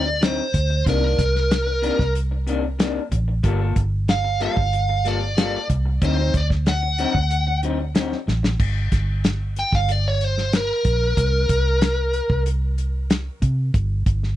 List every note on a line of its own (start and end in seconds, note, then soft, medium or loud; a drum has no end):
0.00 0.40 D2 medium
0.00 0.23 D5 medium
0.05 muted clean electric guitar stroke soft
0.21 0.41 D3 medium
0.21 0.41 F#3 medium
0.21 0.42 C4 medium
0.21 0.42 D#4 medium
0.21 0.83 C5 medium
0.21 snare medium
0.21 closed hi-hat medium
0.54 0.82 D2 medium
0.54 muted clean electric guitar stroke soft
0.54 kick medium
0.54 closed hi-hat medium
0.70 muted clean electric guitar stroke soft
0.86 1.14 C2 loud
0.86 1.02 C3 medium
0.86 1.03 D#3 medium
0.86 1.02 A#3 medium
0.86 1.01 D4 medium
0.86 2.13 A#4 medium
0.86 kick medium
0.86 closed hi-hat medium
1.02 1.18 D#3 soft
1.02 1.18 A#3 soft
1.02 1.18 D4 soft
1.18 1.89 C2 medium
1.18 muted clean electric guitar stroke soft
1.18 kick medium
1.18 snare soft
1.18 closed hi-hat medium
1.36 snare soft
1.51 muted clean electric guitar stroke soft
1.51 snare medium
1.51 closed hi-hat medium
1.67 muted clean electric guitar stroke soft
1.82 1.99 C3 medium
1.82 1.99 D#3 medium
1.82 1.98 A#3 medium
1.82 1.98 D4 medium
1.82 closed hi-hat medium
1.99 2.98 C2 medium
1.99 muted clean electric guitar stroke medium
1.99 kick medium
1.99 snare soft
2.15 closed hi-hat medium
2.31 muted clean electric guitar stroke soft
2.47 2.63 C3 medium
2.47 2.64 D#3 medium
2.47 2.63 A#3 medium
2.47 2.62 D4 medium
2.47 closed hi-hat medium
2.64 muted clean electric guitar stroke soft
2.79 2.99 C3 medium
2.79 2.99 D#3 medium
2.79 2.99 A#3 medium
2.79 3.00 D4 medium
2.79 snare loud
2.79 closed hi-hat medium
3.11 3.40 A1 medium
3.11 muted clean electric guitar stroke soft
3.11 kick medium
3.11 closed hi-hat medium
3.28 muted clean electric guitar stroke soft
3.43 3.72 G1 loud
3.43 3.60 G3 medium
3.43 3.61 A#3 medium
3.43 3.60 F4 medium
3.43 3.58 A4 medium
3.43 kick medium
3.43 closed hi-hat medium
3.59 3.76 A#3 soft
3.59 3.76 F4 soft
3.59 3.76 A4 medium
3.76 4.47 G1 medium
3.76 muted clean electric guitar stroke soft
3.76 kick medium
3.76 closed hi-hat medium
4.08 4.42 F5 loud
4.08 muted clean electric guitar stroke soft
4.08 snare loud
4.08 closed hi-hat medium
4.24 muted clean electric guitar stroke soft
4.40 4.57 G3 medium
4.40 4.57 A#3 medium
4.40 4.56 F4 medium
4.40 4.56 A4 medium
4.40 5.08 F5 medium
4.40 closed hi-hat soft
4.57 5.55 G1 medium
4.57 muted clean electric guitar stroke soft
4.57 kick medium
4.73 closed hi-hat medium
4.89 muted clean electric guitar stroke soft
5.05 5.21 G3 medium
5.05 5.21 A#3 medium
5.05 5.21 F4 medium
5.05 5.20 A4 medium
5.05 5.67 D5 medium
5.05 closed hi-hat medium
5.21 muted clean electric guitar stroke soft
5.37 5.57 G3 medium
5.37 5.57 A#3 medium
5.37 5.57 F4 medium
5.37 5.58 A4 medium
5.37 snare loud
5.37 closed hi-hat medium
5.69 5.98 C2 medium
5.69 muted clean electric guitar stroke soft
5.69 kick medium
5.69 closed hi-hat medium
5.86 muted clean electric guitar stroke soft
6.02 6.30 D2 loud
6.02 6.18 D3 medium
6.02 6.18 F#3 medium
6.02 6.18 C4 medium
6.02 6.17 D#4 medium
6.02 6.34 C5 medium
6.02 kick loud
6.02 closed hi-hat medium
6.18 6.33 F#3 soft
6.18 6.34 C4 soft
6.18 6.34 D#4 soft
6.34 7.05 D2 medium
6.34 6.45 D5 medium
6.34 muted clean electric guitar stroke soft
6.34 kick medium
6.34 closed hi-hat medium
6.50 kick medium
6.50 snare soft
6.66 7.60 F#5 medium
6.66 muted clean electric guitar stroke soft
6.66 snare medium
6.66 closed hi-hat medium
6.83 muted clean electric guitar stroke soft
6.98 7.15 D3 medium
6.98 7.15 F#3 medium
6.98 7.15 C4 medium
6.98 7.14 D#4 medium
6.98 closed hi-hat medium
7.15 8.13 D2 medium
7.15 muted clean electric guitar stroke soft
7.15 kick medium
7.30 closed hi-hat medium
7.47 muted clean electric guitar stroke soft
7.63 7.79 D3 medium
7.63 7.80 F#3 medium
7.63 7.79 C4 medium
7.63 7.78 D#4 medium
7.63 closed hi-hat medium
7.79 muted clean electric guitar stroke soft
7.95 8.14 D3 medium
7.95 8.15 F#3 medium
7.95 8.15 C4 medium
7.95 8.16 D#4 medium
7.95 snare loud
7.95 closed hi-hat medium
8.12 snare soft
8.27 8.56 A1 medium
8.27 muted clean electric guitar stroke soft
8.27 snare medium
8.43 muted clean electric guitar stroke soft
8.43 snare medium
8.60 8.88 G1 loud
8.60 kick loud
8.60 crash loud
8.92 9.62 G1 medium
8.92 kick medium
8.92 snare soft
8.92 closed hi-hat medium
9.24 snare medium
9.24 closed hi-hat medium
9.56 9.74 G5 medium
9.56 closed hi-hat medium
9.72 10.71 G1 medium
9.72 9.92 F5 medium
9.72 kick medium
9.72 snare soft
9.89 10.06 D5 medium
9.89 closed hi-hat medium
10.08 10.24 C#5 medium
10.21 10.54 C5 medium
10.21 closed hi-hat medium
10.38 snare soft
10.53 12.43 A#4 medium
10.53 snare medium
10.53 closed hi-hat medium
10.85 11.13 A#1 medium
10.85 kick medium
10.85 closed hi-hat medium
11.17 11.45 C2 loud
11.17 kick medium
11.17 closed hi-hat medium
11.49 12.19 C2 medium
11.49 kick medium
11.49 closed hi-hat medium
11.81 snare loud
11.81 closed hi-hat medium
12.13 closed hi-hat medium
12.30 13.28 C2 medium
12.30 kick medium
12.46 closed hi-hat medium
12.78 closed hi-hat medium
13.10 snare loud
13.10 closed hi-hat medium
13.42 13.70 C3 medium
13.42 kick medium
13.42 closed hi-hat medium
13.74 14.02 G1 medium
13.74 kick loud
13.74 closed hi-hat medium
14.06 14.36 G1 medium
14.06 kick medium
14.06 closed hi-hat medium
14.23 snare soft